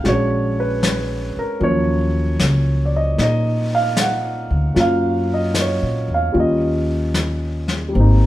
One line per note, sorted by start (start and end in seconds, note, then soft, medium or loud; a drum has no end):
0.04 1.32 A#1 medium
0.04 1.61 G#3 soft
0.04 1.59 C#4 soft
0.04 1.61 D4 soft
0.04 1.62 F#4 medium
0.04 brush sweep soft
0.04 snare soft
0.09 0.56 C#5 medium
0.60 0.83 B4 medium
0.83 1.38 B4 medium
0.83 snare soft
0.83 hi-hat pedal soft
1.36 1.63 A#4 medium
1.36 muted upright bass stroke soft
1.60 2.35 D#2 medium
1.60 4.76 F3 soft
1.60 4.73 F#3 soft
1.60 3.15 A#3 soft
1.60 4.73 C#4 soft
1.60 2.81 C#5 medium
1.60 brush sweep soft
2.39 3.14 C#2 medium
2.39 snare soft
2.39 hi-hat pedal soft
2.85 2.94 D5 soft
2.96 3.20 D#5 medium
3.17 4.47 A#2 medium
3.17 4.74 A#3 soft
3.17 4.77 D#4 soft
3.17 brush sweep soft
3.17 snare soft
3.21 3.75 D#5 medium
3.75 3.99 F5 medium
3.97 snare soft
3.97 hi-hat pedal soft
4.01 4.61 F#5 medium
4.50 4.74 D2 medium
4.74 5.77 F#2 medium
4.74 6.34 F#3 soft
4.74 6.31 A#3 soft
4.74 6.32 C#4 soft
4.74 6.32 F4 medium
4.74 brush sweep soft
4.74 snare soft
4.80 5.28 F5 medium
5.34 5.58 D#5 medium
5.55 snare soft
5.55 hi-hat pedal soft
5.61 6.08 C#5 medium
5.83 6.07 A#2 soft
6.08 6.33 E2 medium
6.14 6.36 F5 medium
6.33 7.91 D#2 medium
6.33 7.87 G3 soft
6.33 7.91 A#3 soft
6.33 7.95 C#4 soft
6.33 7.94 F4 soft
6.33 brush sweep soft
6.40 7.68 D#5 medium
7.14 snare soft
7.14 hi-hat pedal soft
7.68 snare soft
7.89 8.26 G3 medium
7.93 8.26 G#1 medium
7.93 8.26 A#3 soft
7.93 8.26 C4 soft
7.93 brush sweep soft
8.00 8.26 D#4 medium